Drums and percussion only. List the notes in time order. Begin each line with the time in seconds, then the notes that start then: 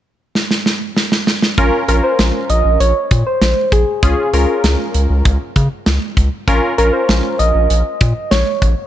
0.35 snare
0.51 snare
0.66 snare
0.97 snare
1.12 snare
1.27 snare
1.42 snare
1.58 kick, closed hi-hat
1.88 closed hi-hat
2.19 snare, closed hi-hat
2.50 closed hi-hat
2.80 closed hi-hat
3.11 kick, closed hi-hat
3.42 snare, closed hi-hat
3.72 kick, closed hi-hat
4.03 kick, closed hi-hat
4.34 closed hi-hat
4.64 snare, closed hi-hat
4.94 closed hi-hat
5.25 kick, closed hi-hat
5.56 kick, closed hi-hat
5.86 snare, closed hi-hat
6.17 kick, closed hi-hat
6.48 kick, closed hi-hat
6.78 closed hi-hat
7.09 snare, closed hi-hat
7.39 closed hi-hat
7.70 closed hi-hat
8.01 kick, closed hi-hat
8.31 snare, closed hi-hat
8.62 kick, closed hi-hat